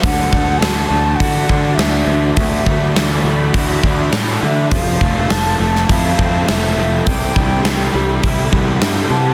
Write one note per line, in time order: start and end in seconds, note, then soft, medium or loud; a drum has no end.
0.02 0.27 D2 medium
0.02 1.49 D3 medium
0.02 4.68 F#4 medium
0.02 4.68 D5 medium
0.02 0.60 F#5 loud
0.02 2.35 A5 medium
0.02 kick loud
0.02 open hi-hat medium
0.32 0.57 D2 medium
0.32 0.60 F#3 medium
0.32 0.91 A3 medium
0.32 kick medium
0.58 0.85 D2 medium
0.58 2.07 E3 medium
0.58 2.08 F#3 medium
0.58 0.86 A5 loud
0.58 open hi-hat medium
0.62 snare loud
0.87 1.14 D2 medium
0.87 1.17 A5 loud
0.92 1.78 A3 medium
1.16 2.69 E4 medium
1.16 1.76 F#5 loud
1.20 1.44 D3 medium
1.20 2.67 F#4 medium
1.20 kick medium
1.20 open hi-hat medium
1.49 1.74 D3 medium
1.49 2.95 D4 medium
1.49 kick medium
1.75 2.02 D2 medium
1.75 2.64 A3 medium
1.75 2.34 E5 medium
1.79 snare loud
1.79 open hi-hat medium
2.06 2.31 D2 loud
2.06 2.93 E3 medium
2.06 3.54 D4 medium
2.35 2.61 D2 medium
2.35 3.83 D3 medium
2.35 3.20 E5 medium
2.35 kick loud
2.35 open hi-hat soft
2.39 4.70 B5 medium
2.65 2.90 D2 medium
2.65 2.94 F#3 medium
2.65 3.22 A3 medium
2.65 kick medium
2.94 3.19 D2 medium
2.94 4.41 E3 medium
2.94 4.42 F#3 medium
2.94 snare loud
2.94 open hi-hat medium
3.23 3.48 D2 medium
3.23 4.10 A3 medium
3.53 3.78 D2 medium
3.53 4.75 E4 medium
3.53 4.71 F#4 medium
3.53 kick medium
3.53 open hi-hat medium
3.83 4.07 D2 medium
3.83 4.71 D4 medium
3.83 kick medium
4.12 4.37 A2 medium
4.12 4.71 A3 medium
4.12 snare loud
4.12 open hi-hat medium
4.41 4.66 D3 medium
4.41 4.69 E3 medium
4.41 4.72 D4 medium
4.41 4.71 E5 medium
4.69 4.96 F1 loud
4.69 5.27 F3 medium
4.69 9.34 A4 medium
4.69 5.32 F5 medium
4.69 7.03 A5 medium
4.69 kick loud
4.69 open hi-hat medium
5.01 5.25 F1 medium
5.01 5.58 A3 medium
5.01 kick medium
5.28 5.54 F1 medium
5.28 6.75 F3 medium
5.28 5.60 A5 loud
5.28 snare loud
5.28 open hi-hat medium
5.59 5.84 F1 medium
5.59 6.46 A3 medium
5.59 5.92 A5 loud
5.76 snare soft
5.87 6.13 F2 medium
5.87 8.22 E4 medium
5.87 6.51 F5 loud
5.87 kick medium
5.87 open hi-hat medium
6.18 6.42 F2 medium
6.18 7.06 C4 medium
6.18 kick medium
6.47 6.72 F1 medium
6.47 7.06 A3 medium
6.47 7.09 E5 medium
6.47 snare loud
6.47 open hi-hat medium
6.76 7.00 F1 medium
6.76 7.05 F3 medium
6.76 7.06 C4 medium
7.06 7.30 C2 medium
7.06 7.62 C3 medium
7.06 9.34 G4 medium
7.06 7.94 G5 medium
7.06 9.34 B5 loud
7.06 kick loud
7.06 open hi-hat medium
7.34 7.60 C2 medium
7.34 7.64 E3 medium
7.34 7.91 G3 medium
7.34 kick medium
7.63 7.88 C2 medium
7.63 9.05 C3 medium
7.63 9.34 E3 medium
7.63 snare loud
7.63 open hi-hat soft
7.92 8.18 C2 medium
7.92 8.77 G3 medium
8.22 8.47 C2 medium
8.22 9.34 E4 medium
8.22 kick medium
8.22 open hi-hat soft
8.50 8.76 C2 medium
8.50 9.34 B3 medium
8.50 kick medium
8.78 9.04 G2 medium
8.78 9.34 G3 medium
8.78 snare loud
8.78 open hi-hat soft
9.07 9.34 C3 medium
9.07 9.34 B3 medium
9.07 9.34 A5 medium